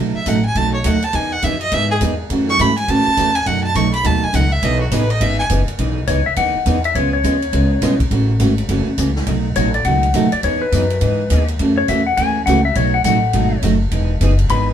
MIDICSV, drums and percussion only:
0, 0, Header, 1, 2, 480
1, 0, Start_track
1, 0, Key_signature, 4, "major"
1, 0, Tempo, 290416
1, 1884, Time_signature, 4, 2, 24, 8
1, 24351, End_track
2, 0, Start_track
2, 0, Title_t, "Drums"
2, 429, Note_on_c, 9, 44, 65
2, 429, Note_on_c, 9, 51, 69
2, 431, Note_on_c, 9, 36, 23
2, 595, Note_off_c, 9, 44, 0
2, 595, Note_off_c, 9, 51, 0
2, 596, Note_off_c, 9, 36, 0
2, 912, Note_on_c, 9, 36, 25
2, 916, Note_on_c, 9, 51, 63
2, 1077, Note_off_c, 9, 36, 0
2, 1081, Note_off_c, 9, 51, 0
2, 1389, Note_on_c, 9, 44, 62
2, 1389, Note_on_c, 9, 51, 89
2, 1393, Note_on_c, 9, 36, 22
2, 1555, Note_off_c, 9, 44, 0
2, 1555, Note_off_c, 9, 51, 0
2, 1558, Note_off_c, 9, 36, 0
2, 1693, Note_on_c, 9, 51, 53
2, 1859, Note_off_c, 9, 51, 0
2, 1868, Note_on_c, 9, 51, 72
2, 1874, Note_on_c, 9, 36, 22
2, 2033, Note_off_c, 9, 51, 0
2, 2039, Note_off_c, 9, 36, 0
2, 2354, Note_on_c, 9, 44, 66
2, 2354, Note_on_c, 9, 51, 72
2, 2357, Note_on_c, 9, 36, 28
2, 2520, Note_off_c, 9, 44, 0
2, 2520, Note_off_c, 9, 51, 0
2, 2522, Note_off_c, 9, 36, 0
2, 2657, Note_on_c, 9, 51, 49
2, 2822, Note_off_c, 9, 51, 0
2, 2837, Note_on_c, 9, 51, 73
2, 2838, Note_on_c, 9, 36, 27
2, 3003, Note_off_c, 9, 36, 0
2, 3003, Note_off_c, 9, 51, 0
2, 3318, Note_on_c, 9, 44, 52
2, 3318, Note_on_c, 9, 51, 73
2, 3320, Note_on_c, 9, 36, 28
2, 3483, Note_off_c, 9, 44, 0
2, 3483, Note_off_c, 9, 51, 0
2, 3485, Note_off_c, 9, 36, 0
2, 3799, Note_on_c, 9, 36, 24
2, 3801, Note_on_c, 9, 51, 69
2, 3965, Note_off_c, 9, 36, 0
2, 3966, Note_off_c, 9, 51, 0
2, 4100, Note_on_c, 9, 38, 44
2, 4266, Note_off_c, 9, 38, 0
2, 4282, Note_on_c, 9, 36, 24
2, 4284, Note_on_c, 9, 44, 60
2, 4284, Note_on_c, 9, 51, 69
2, 4447, Note_off_c, 9, 36, 0
2, 4449, Note_off_c, 9, 44, 0
2, 4449, Note_off_c, 9, 51, 0
2, 4584, Note_on_c, 9, 51, 52
2, 4749, Note_off_c, 9, 51, 0
2, 4762, Note_on_c, 9, 36, 26
2, 4764, Note_on_c, 9, 51, 74
2, 4927, Note_off_c, 9, 36, 0
2, 4930, Note_off_c, 9, 51, 0
2, 5241, Note_on_c, 9, 36, 21
2, 5244, Note_on_c, 9, 44, 59
2, 5244, Note_on_c, 9, 51, 76
2, 5407, Note_off_c, 9, 36, 0
2, 5409, Note_off_c, 9, 44, 0
2, 5409, Note_off_c, 9, 51, 0
2, 5539, Note_on_c, 9, 51, 60
2, 5704, Note_off_c, 9, 51, 0
2, 5721, Note_on_c, 9, 36, 19
2, 5723, Note_on_c, 9, 51, 61
2, 5886, Note_off_c, 9, 36, 0
2, 5888, Note_off_c, 9, 51, 0
2, 6201, Note_on_c, 9, 36, 23
2, 6203, Note_on_c, 9, 44, 55
2, 6203, Note_on_c, 9, 51, 66
2, 6367, Note_off_c, 9, 36, 0
2, 6369, Note_off_c, 9, 44, 0
2, 6369, Note_off_c, 9, 51, 0
2, 6505, Note_on_c, 9, 51, 55
2, 6670, Note_off_c, 9, 51, 0
2, 6682, Note_on_c, 9, 36, 25
2, 6685, Note_on_c, 9, 51, 76
2, 6847, Note_off_c, 9, 36, 0
2, 6851, Note_off_c, 9, 51, 0
2, 7162, Note_on_c, 9, 36, 23
2, 7167, Note_on_c, 9, 44, 66
2, 7167, Note_on_c, 9, 51, 79
2, 7328, Note_off_c, 9, 36, 0
2, 7332, Note_off_c, 9, 44, 0
2, 7332, Note_off_c, 9, 51, 0
2, 7642, Note_on_c, 9, 36, 25
2, 7645, Note_on_c, 9, 51, 77
2, 7808, Note_off_c, 9, 36, 0
2, 7810, Note_off_c, 9, 51, 0
2, 8123, Note_on_c, 9, 36, 28
2, 8123, Note_on_c, 9, 44, 69
2, 8123, Note_on_c, 9, 51, 78
2, 8288, Note_off_c, 9, 36, 0
2, 8288, Note_off_c, 9, 44, 0
2, 8288, Note_off_c, 9, 51, 0
2, 8428, Note_on_c, 9, 51, 54
2, 8593, Note_off_c, 9, 51, 0
2, 8603, Note_on_c, 9, 36, 28
2, 8608, Note_on_c, 9, 51, 79
2, 8768, Note_off_c, 9, 36, 0
2, 8773, Note_off_c, 9, 51, 0
2, 9082, Note_on_c, 9, 36, 25
2, 9083, Note_on_c, 9, 44, 70
2, 9083, Note_on_c, 9, 51, 82
2, 9248, Note_off_c, 9, 36, 0
2, 9248, Note_off_c, 9, 44, 0
2, 9248, Note_off_c, 9, 51, 0
2, 9386, Note_on_c, 9, 51, 55
2, 9551, Note_off_c, 9, 51, 0
2, 9562, Note_on_c, 9, 36, 25
2, 9564, Note_on_c, 9, 51, 66
2, 9728, Note_off_c, 9, 36, 0
2, 9729, Note_off_c, 9, 51, 0
2, 10040, Note_on_c, 9, 44, 54
2, 10040, Note_on_c, 9, 51, 68
2, 10042, Note_on_c, 9, 36, 25
2, 10205, Note_off_c, 9, 44, 0
2, 10205, Note_off_c, 9, 51, 0
2, 10207, Note_off_c, 9, 36, 0
2, 10519, Note_on_c, 9, 51, 76
2, 10521, Note_on_c, 9, 36, 23
2, 10684, Note_off_c, 9, 51, 0
2, 10687, Note_off_c, 9, 36, 0
2, 11003, Note_on_c, 9, 36, 24
2, 11004, Note_on_c, 9, 44, 53
2, 11004, Note_on_c, 9, 51, 71
2, 11168, Note_off_c, 9, 36, 0
2, 11170, Note_off_c, 9, 44, 0
2, 11170, Note_off_c, 9, 51, 0
2, 11307, Note_on_c, 9, 51, 53
2, 11473, Note_off_c, 9, 51, 0
2, 11485, Note_on_c, 9, 36, 26
2, 11491, Note_on_c, 9, 51, 66
2, 11651, Note_off_c, 9, 36, 0
2, 11657, Note_off_c, 9, 51, 0
2, 11966, Note_on_c, 9, 36, 18
2, 11972, Note_on_c, 9, 44, 54
2, 11972, Note_on_c, 9, 51, 70
2, 12131, Note_off_c, 9, 36, 0
2, 12137, Note_off_c, 9, 44, 0
2, 12137, Note_off_c, 9, 51, 0
2, 12269, Note_on_c, 9, 51, 50
2, 12434, Note_off_c, 9, 51, 0
2, 12444, Note_on_c, 9, 36, 22
2, 12444, Note_on_c, 9, 51, 73
2, 12609, Note_off_c, 9, 51, 0
2, 12610, Note_off_c, 9, 36, 0
2, 12921, Note_on_c, 9, 38, 37
2, 12921, Note_on_c, 9, 44, 59
2, 12921, Note_on_c, 9, 51, 77
2, 12922, Note_on_c, 9, 36, 19
2, 13086, Note_off_c, 9, 38, 0
2, 13086, Note_off_c, 9, 44, 0
2, 13086, Note_off_c, 9, 51, 0
2, 13087, Note_off_c, 9, 36, 0
2, 13222, Note_on_c, 9, 36, 70
2, 13224, Note_on_c, 9, 51, 59
2, 13387, Note_off_c, 9, 36, 0
2, 13389, Note_off_c, 9, 51, 0
2, 13401, Note_on_c, 9, 36, 24
2, 13404, Note_on_c, 9, 51, 67
2, 13567, Note_off_c, 9, 36, 0
2, 13569, Note_off_c, 9, 51, 0
2, 13878, Note_on_c, 9, 44, 63
2, 13878, Note_on_c, 9, 51, 75
2, 13879, Note_on_c, 9, 36, 23
2, 14043, Note_off_c, 9, 44, 0
2, 14043, Note_off_c, 9, 51, 0
2, 14045, Note_off_c, 9, 36, 0
2, 14180, Note_on_c, 9, 51, 54
2, 14346, Note_off_c, 9, 51, 0
2, 14357, Note_on_c, 9, 36, 25
2, 14358, Note_on_c, 9, 51, 76
2, 14522, Note_off_c, 9, 36, 0
2, 14523, Note_off_c, 9, 51, 0
2, 14837, Note_on_c, 9, 36, 23
2, 14837, Note_on_c, 9, 44, 72
2, 14837, Note_on_c, 9, 51, 75
2, 15002, Note_off_c, 9, 36, 0
2, 15002, Note_off_c, 9, 44, 0
2, 15002, Note_off_c, 9, 51, 0
2, 15133, Note_on_c, 9, 38, 41
2, 15298, Note_off_c, 9, 38, 0
2, 15314, Note_on_c, 9, 51, 71
2, 15315, Note_on_c, 9, 36, 28
2, 15480, Note_off_c, 9, 36, 0
2, 15480, Note_off_c, 9, 51, 0
2, 15794, Note_on_c, 9, 44, 51
2, 15794, Note_on_c, 9, 51, 70
2, 15795, Note_on_c, 9, 36, 26
2, 15959, Note_off_c, 9, 44, 0
2, 15959, Note_off_c, 9, 51, 0
2, 15961, Note_off_c, 9, 36, 0
2, 16098, Note_on_c, 9, 51, 48
2, 16263, Note_off_c, 9, 51, 0
2, 16273, Note_on_c, 9, 51, 68
2, 16276, Note_on_c, 9, 36, 27
2, 16439, Note_off_c, 9, 51, 0
2, 16442, Note_off_c, 9, 36, 0
2, 16576, Note_on_c, 9, 51, 51
2, 16741, Note_off_c, 9, 51, 0
2, 16755, Note_on_c, 9, 44, 62
2, 16755, Note_on_c, 9, 51, 75
2, 16757, Note_on_c, 9, 36, 28
2, 16920, Note_off_c, 9, 44, 0
2, 16920, Note_off_c, 9, 51, 0
2, 16923, Note_off_c, 9, 36, 0
2, 17057, Note_on_c, 9, 51, 57
2, 17222, Note_off_c, 9, 51, 0
2, 17239, Note_on_c, 9, 36, 25
2, 17240, Note_on_c, 9, 51, 71
2, 17404, Note_off_c, 9, 36, 0
2, 17405, Note_off_c, 9, 51, 0
2, 17721, Note_on_c, 9, 36, 24
2, 17724, Note_on_c, 9, 44, 65
2, 17724, Note_on_c, 9, 51, 76
2, 17886, Note_off_c, 9, 36, 0
2, 17889, Note_off_c, 9, 44, 0
2, 17889, Note_off_c, 9, 51, 0
2, 18020, Note_on_c, 9, 51, 52
2, 18185, Note_off_c, 9, 51, 0
2, 18196, Note_on_c, 9, 51, 75
2, 18199, Note_on_c, 9, 36, 26
2, 18362, Note_off_c, 9, 51, 0
2, 18364, Note_off_c, 9, 36, 0
2, 18677, Note_on_c, 9, 44, 61
2, 18677, Note_on_c, 9, 51, 78
2, 18679, Note_on_c, 9, 36, 22
2, 18842, Note_off_c, 9, 44, 0
2, 18842, Note_off_c, 9, 51, 0
2, 18845, Note_off_c, 9, 36, 0
2, 18979, Note_on_c, 9, 51, 57
2, 19144, Note_off_c, 9, 51, 0
2, 19159, Note_on_c, 9, 51, 68
2, 19160, Note_on_c, 9, 36, 22
2, 19324, Note_off_c, 9, 51, 0
2, 19326, Note_off_c, 9, 36, 0
2, 19637, Note_on_c, 9, 44, 54
2, 19637, Note_on_c, 9, 51, 67
2, 19641, Note_on_c, 9, 36, 24
2, 19803, Note_off_c, 9, 44, 0
2, 19803, Note_off_c, 9, 51, 0
2, 19806, Note_off_c, 9, 36, 0
2, 20120, Note_on_c, 9, 51, 74
2, 20122, Note_on_c, 9, 36, 27
2, 20285, Note_off_c, 9, 51, 0
2, 20287, Note_off_c, 9, 36, 0
2, 20603, Note_on_c, 9, 36, 22
2, 20607, Note_on_c, 9, 44, 64
2, 20607, Note_on_c, 9, 51, 75
2, 20768, Note_off_c, 9, 36, 0
2, 20772, Note_off_c, 9, 44, 0
2, 20772, Note_off_c, 9, 51, 0
2, 21079, Note_on_c, 9, 51, 68
2, 21081, Note_on_c, 9, 36, 24
2, 21244, Note_off_c, 9, 51, 0
2, 21246, Note_off_c, 9, 36, 0
2, 21556, Note_on_c, 9, 44, 67
2, 21556, Note_on_c, 9, 51, 80
2, 21559, Note_on_c, 9, 36, 26
2, 21721, Note_off_c, 9, 44, 0
2, 21721, Note_off_c, 9, 51, 0
2, 21724, Note_off_c, 9, 36, 0
2, 22035, Note_on_c, 9, 51, 80
2, 22038, Note_on_c, 9, 36, 22
2, 22201, Note_off_c, 9, 51, 0
2, 22203, Note_off_c, 9, 36, 0
2, 22519, Note_on_c, 9, 36, 23
2, 22519, Note_on_c, 9, 44, 61
2, 22519, Note_on_c, 9, 51, 73
2, 22684, Note_off_c, 9, 36, 0
2, 22685, Note_off_c, 9, 44, 0
2, 22685, Note_off_c, 9, 51, 0
2, 22998, Note_on_c, 9, 36, 26
2, 22998, Note_on_c, 9, 51, 71
2, 23163, Note_off_c, 9, 36, 0
2, 23164, Note_off_c, 9, 51, 0
2, 23478, Note_on_c, 9, 36, 27
2, 23482, Note_on_c, 9, 44, 59
2, 23482, Note_on_c, 9, 51, 77
2, 23644, Note_off_c, 9, 36, 0
2, 23648, Note_off_c, 9, 44, 0
2, 23648, Note_off_c, 9, 51, 0
2, 23777, Note_on_c, 9, 51, 54
2, 23942, Note_off_c, 9, 51, 0
2, 23957, Note_on_c, 9, 36, 22
2, 23957, Note_on_c, 9, 51, 81
2, 24122, Note_off_c, 9, 51, 0
2, 24123, Note_off_c, 9, 36, 0
2, 24351, End_track
0, 0, End_of_file